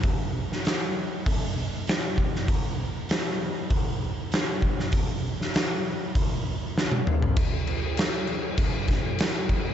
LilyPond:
\new DrumStaff \with { instrumentName = "Drums" } \drummode { \time 4/4 \tempo 4 = 98 <hho bd>8. sn16 <hho sn>4 <hho bd>4 <hho sn>8 bd16 sn16 | <hho bd>4 <hho sn>4 <hho bd>4 <hho sn>8 bd16 sn16 | <hho bd>8. sn16 <hho sn>4 <hho bd>4 sn16 tommh16 toml16 tomfh16 | <cymc bd>8 cymc8 <cymc sn>8 cymc8 <cymc bd>8 <cymc bd sn>8 <cymc sn>8 <cymc bd>8 | }